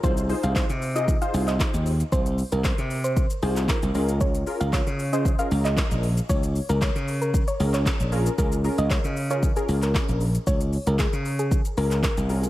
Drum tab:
HH |-xox-xox-xox-xox|-xox-xox-xox-xox|-xox-xox-xox-xox|-xox-xox-xox-xox|
SH |xxxxxxxxxxxxxxxx|xxxxxxxxxxxxxxxx|xxxxxxxxxxxxxxxx|xxxxxxxxxxxxxxxx|
CP |----x------xx---|----x------xx---|----x------xx---|----x------xx---|
SD |----o-------o---|----o-------o---|----o-------o---|----o-------o---|
BD |o---o---o---o---|o---o---o---o---|o---o---o---o---|o---o---o---o---|

HH |-xox-xox-xox-xox|-xox-xox-xox-xox|
SH |xxxxxxxxxxxxxxxx|xxxxxxxxxxxxxxxx|
CP |----x------xx---|----x------xx---|
SD |----o-------o---|----o-------o---|
BD |o---o---o---o---|o---o---o---o---|